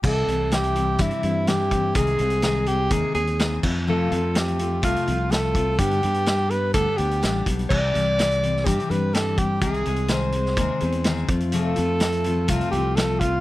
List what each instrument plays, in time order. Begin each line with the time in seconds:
0.03 fingered electric bass C2, steel-string acoustic guitar C3 E3 G3 C4 E4, tenor saxophone A4, kick, crash
0.26 fingered electric bass C2, steel-string acoustic guitar G3 C4 E4, closed hi-hat
0.51 steel-string acoustic guitar E3 G3 C4 E4, tenor saxophone G4, snare, closed hi-hat
0.63 closed hi-hat
0.75 steel-string acoustic guitar G3 C4 E4, closed hi-hat
0.98 fingered electric bass G2, steel-string acoustic guitar C3 E3 G3 C4 E4, tenor saxophone E4, kick, closed hi-hat
1.11 closed hi-hat
1.23 fingered electric bass G2, steel-string acoustic guitar G3 C4 E4, closed hi-hat
1.47 steel-string acoustic guitar E3 G3 C4 E4, tenor saxophone G4, snare, closed hi-hat
1.71 steel-string acoustic guitar G3 C4 E4, kick, closed hi-hat
1.95 fingered electric bass C2, steel-string acoustic guitar C3 D#3 G#3 C4 G#4, tenor saxophone G#4, kick, closed hi-hat
2.07 closed hi-hat
2.19 fingered electric bass C2, steel-string acoustic guitar G#3 C4 G#4, closed hi-hat
2.30 closed hi-hat
2.42 steel-string acoustic guitar D#3 G#3 C4 G#4, snare, closed hi-hat
2.66 steel-string acoustic guitar G#3 C4 G#4, tenor saxophone G4, closed hi-hat
2.90 fingered electric bass D#2, steel-string acoustic guitar C3 D#3 G#3 C4 G#4, tenor saxophone G#4, kick, closed hi-hat
3.14 fingered electric bass D#2, steel-string acoustic guitar G#3 C4 G#4, tenor saxophone G#4, closed hi-hat
3.27 closed hi-hat
3.39 steel-string acoustic guitar D#3 G#3 C4 G#4, snare, closed hi-hat
3.63 fingered electric bass F2, steel-string acoustic guitar F3 A3 C4 F4, kick, crash
3.87 steel-string acoustic guitar F2 C3 F3 A3 C4 F4, tenor saxophone A4
4.11 fingered electric bass F2, steel-string acoustic guitar F3 A3 C4 F4, closed hi-hat
4.34 steel-string acoustic guitar F3 A3 C4 F4, tenor saxophone G4, snare, closed hi-hat
4.48 closed hi-hat
4.58 steel-string acoustic guitar F3 A3 C4 F4, closed hi-hat
4.82 fingered electric bass C2, steel-string acoustic guitar F2 C3 F3 A3 C4 F4, tenor saxophone F4, kick, closed hi-hat
4.96 closed hi-hat
5.06 fingered electric bass C2, steel-string acoustic guitar F3 A3 C4 F4, closed hi-hat
5.30 steel-string acoustic guitar F3 A3 C4 F4, tenor saxophone A4, snare, closed hi-hat
5.55 steel-string acoustic guitar F3 A3 C4 F4, kick, closed hi-hat
5.79 fingered electric bass G2, steel-string acoustic guitar G2 D3 G3 B3 D4 G4, tenor saxophone G4, kick, closed hi-hat
5.91 closed hi-hat
6.02 fingered electric bass G2, steel-string acoustic guitar G3 B3 D4 G4, closed hi-hat
6.14 closed hi-hat
6.26 steel-string acoustic guitar G3 B3 D4 G4, snare, closed hi-hat
6.50 steel-string acoustic guitar G3 B3 D4 G4, tenor saxophone B4, closed hi-hat
6.74 fingered electric bass D2, steel-string acoustic guitar G2 D3 G3 B3 D4 G4, tenor saxophone A4, kick, closed hi-hat
6.97 fingered electric bass D2, steel-string acoustic guitar G3 B3 D4 G4, tenor saxophone G4, closed hi-hat
7.11 closed hi-hat
7.21 fingered electric bass A1, steel-string acoustic guitar G3 B3 D4 G4, snare, closed hi-hat
7.46 fingered electric bass B1, steel-string acoustic guitar G3 B3 D4 G4, kick, closed hi-hat
7.59 closed hi-hat
7.70 fingered electric bass C2, steel-string acoustic guitar C3 E3 G3 C4 G4, tenor saxophone D5, kick, crash
7.94 fingered electric bass C2, steel-string acoustic guitar G3 C4 G4, closed hi-hat
8.18 steel-string acoustic guitar E3 G3 C4 G4, snare, closed hi-hat
8.31 closed hi-hat
8.42 steel-string acoustic guitar G3 C4 G4, closed hi-hat
8.56 snare
8.65 fingered electric bass G2, steel-string acoustic guitar C3 E3 G3 C4 G4, tenor saxophone G4, kick, closed hi-hat
8.80 closed hi-hat
8.90 fingered electric bass G2, steel-string acoustic guitar G3 C4 G4, tenor saxophone B4, closed hi-hat
9.13 steel-string acoustic guitar E3 G3 C4 G4, tenor saxophone A4, snare, closed hi-hat
9.38 steel-string acoustic guitar G3 C4 G4, tenor saxophone G4, kick, closed hi-hat
9.61 fingered electric bass C2, steel-string acoustic guitar C3 D#3 G#3 C4 G#4, tenor saxophone G#4, kick, closed hi-hat
9.74 closed hi-hat
9.85 fingered electric bass C2, steel-string acoustic guitar G#3 C4 G#4, closed hi-hat
9.96 closed hi-hat
10.08 steel-string acoustic guitar D#3 G#3 C4 G#4, tenor saxophone C5, snare, closed hi-hat
10.32 steel-string acoustic guitar G#3 C4 G#4, closed hi-hat
10.46 snare
10.56 fingered electric bass D#2, steel-string acoustic guitar C3 D#3 G#3 C4 G#4, kick, closed hi-hat
10.80 fingered electric bass E2, steel-string acoustic guitar G#3 C4 G#4, closed hi-hat
10.92 closed hi-hat
11.04 steel-string acoustic guitar D#3 G#3 C4 G#4, snare, closed hi-hat
11.28 fingered electric bass F2, steel-string acoustic guitar F3 A3 C4 F4, kick, closed hi-hat
11.40 closed hi-hat
11.52 steel-string acoustic guitar F2 C3 F3 A3 C4 F4, tenor saxophone A4, closed hi-hat
11.76 fingered electric bass F2, steel-string acoustic guitar F3 A3 C4 F4, closed hi-hat
12.00 steel-string acoustic guitar F3 A3 C4 F4, snare, closed hi-hat
12.12 closed hi-hat
12.24 steel-string acoustic guitar F3 A3 C4 F4, closed hi-hat
12.48 fingered electric bass C2, steel-string acoustic guitar F2 C3 F3 A3 C4 F4, tenor saxophone F4, kick, closed hi-hat
12.61 closed hi-hat
12.71 fingered electric bass C2, steel-string acoustic guitar A3 C4 F4, tenor saxophone G4, closed hi-hat
12.76 steel-string acoustic guitar F3
12.96 steel-string acoustic guitar F3 A3 C4 F4, tenor saxophone A4, snare, closed hi-hat
13.20 steel-string acoustic guitar F3 A3 C4 F4, tenor saxophone F4, kick, closed hi-hat